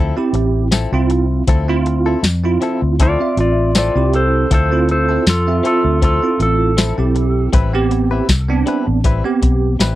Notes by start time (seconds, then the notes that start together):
Already playing: D2 F3 C4 E4 A4
0.16 C4 E4 G4, muted clean electric guitar stroke
0.33 A1, muted clean electric guitar stroke, closed hi-hat
0.71 F3 C4 E4 A4, snare, closed hi-hat, tambourine
0.92 C2 C4 E4 F4, muted clean electric guitar stroke
1.10 muted clean electric guitar stroke, closed hi-hat
1.47 D2 F3 C4 E4 A4, kick, closed hi-hat
1.68 C4 E4 F4, muted clean electric guitar stroke
1.86 muted clean electric guitar stroke, closed hi-hat
2.06 C4 E4 A4
2.23 F2, muted clean electric guitar stroke, snare, closed hi-hat, tambourine
2.44 C4 E4 F4
2.61 F3 C4 E4 A4, closed hi-hat
2.82 D2, muted clean electric guitar stroke
2.99 F3 C4 E4 F4 A4 D5, kick, closed hi-hat
3.20 C4 F4 E5, muted clean electric guitar stroke
3.37 A1 F4 D5, muted clean electric guitar stroke, closed hi-hat
3.75 F3 C4 E4 F4 A4 D5, snare, closed hi-hat, tambourine
3.95 C2 C4 E4 G4, muted clean electric guitar stroke
4.13 A4 C5, muted clean electric guitar stroke, closed hi-hat
4.51 D2 F3 C4 E4 A4 C5, kick, closed hi-hat
4.72 C4 E4 F4
4.89 A4 C5, muted clean electric guitar stroke, closed hi-hat
5.09 C4 E4 A4
5.26 F2 F4 A4, muted clean electric guitar stroke, snare, closed hi-hat, tambourine
5.47 C4 F4 E5
5.63 F3 C4 E4 F4 A4, closed hi-hat
5.85 D2, muted clean electric guitar stroke
6.02 F3 C4 E4 F4 A4, kick, closed hi-hat
6.22 C4 E4 F4, muted clean electric guitar stroke
6.40 A1 A4, muted clean electric guitar stroke, closed hi-hat
6.77 F3 C4 E4 A4, snare, closed hi-hat, tambourine
6.98 B1 C4 E4 G4, muted clean electric guitar stroke
7.15 muted clean electric guitar stroke, closed hi-hat
7.53 A1 G3 C4 E4 B4, kick, closed hi-hat
7.73 B3 C4 G4, muted clean electric guitar stroke
7.91 muted clean electric guitar stroke, closed hi-hat
8.11 C4 E4 B4
8.29 C2, muted clean electric guitar stroke, kick, snare, closed hi-hat, tambourine
8.48 B3 C4 D4
8.66 G3 C4 E4 B4, closed hi-hat
8.87 A1, muted clean electric guitar stroke
9.04 G3 C4 E4 B4, kick, closed hi-hat
9.24 B3 C4 G4, muted clean electric guitar stroke
9.42 B1, muted clean electric guitar stroke, kick, closed hi-hat
9.79 A1 G3 C4 E4 B4, snare, closed hi-hat, tambourine